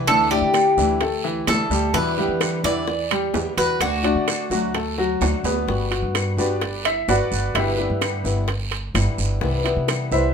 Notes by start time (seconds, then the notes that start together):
Already playing: E3 E4
0.07 D2 D3 A3 D4 E4 A4, high bongo, high timbale, long guiro, claves
0.30 A3 D4 E4 G4 D5, high timbale
0.42 D3
0.53 D3 A3 D4 E4, high bongo, high timbale, low timbale, short guiro, claves
0.77 D2 E3 A3 D4 E4, high bongo, short guiro
1.01 A3 A4, muted nylon-string guitar stroke, high bongo, high timbale, long guiro
1.24 E3 E4, high bongo
1.47 D2 D3 A3 D4 E4 A4, high bongo, low bongo, high timbale, low timbale, short guiro, claves
1.70 D2 G3 G4, high bongo, short guiro
1.93 E2 B2 D3 E3 G3 B3 E4 B4, high bongo, high timbale, long guiro
2.17 D3 G3 B3 E4 G4
2.28 E3
2.41 D3 G3 B3 E4, high bongo, high timbale, low timbale, short guiro, claves
2.63 E2 D3 E3 G3 B3 E4 D5, high bongo, high timbale, short guiro
2.87 muted nylon-string guitar stroke, high bongo, long guiro
3.11 G3 G4, high bongo, high timbale, claves
3.34 E2 D3 G3 B3 E4, high bongo, low bongo, low timbale, short guiro
3.57 E2 F#4 B4, high bongo, high timbale, short guiro
3.80 D2 D3 A3 D4 F#4, high bongo, high timbale, long guiro, claves
4.03 A3 D4 F#4 D5, high timbale
4.15 D3
4.27 D3 A3 D4 F#4, high bongo, high timbale, low timbale, short guiro, claves
4.50 D2 F#3 A3 D4 F#4, high bongo, short guiro
4.75 A3 A4, muted nylon-string guitar stroke, high bongo, high timbale, long guiro
4.98 F#3 F#4, high bongo
5.21 D2 D3 A3 D4 F#4, high bongo, low bongo, high timbale, short guiro, claves
5.44 D2 B3 B4, high bongo, low timbale, short guiro
5.67 G1 G3 B3 F#4, high bongo, long guiro
5.91 B3 F#4, high bongo, high timbale
6.02 G2
6.14 G3 B3 F#4, high bongo, high timbale, short guiro, claves
6.37 G1 B3 D4 F#4 G4 B4 D5, high bongo, short guiro
6.61 muted nylon-string guitar stroke, high bongo, high timbale, long guiro
6.85 E4 E5, high bongo, high timbale, claves
7.08 G1 G3 B3 F#4 B4 D5 F#5, high bongo, low bongo, short guiro
7.31 G1, short guiro
7.55 G1 B2 D3 G3 B3 E4 G4 B4 E5, high bongo, high timbale, long guiro, claves
7.78 D3 G3 B3 E4, high bongo
7.90 G2
8.01 D3 G3 B3 E4, high bongo, high timbale, short guiro, claves
8.24 G1 D3 G3 B3 E4, high bongo, short guiro
8.48 muted nylon-string guitar stroke, high bongo, high timbale, long guiro
8.71 high bongo, high timbale
8.94 G1 D3 G3 B3 E4, high bongo, low bongo, high timbale, short guiro, claves
9.18 G1, short guiro
9.41 C2 C3 E3 G3 B3 E4, high bongo, long guiro
9.64 E3 G3 B3 E4, high bongo, high timbale
9.76 C3
9.88 E3 G3 B3 E4, high bongo, high timbale, short guiro, claves
10.11 C2 E3 G3 B3 E4 B4 C5 E5, high bongo, short guiro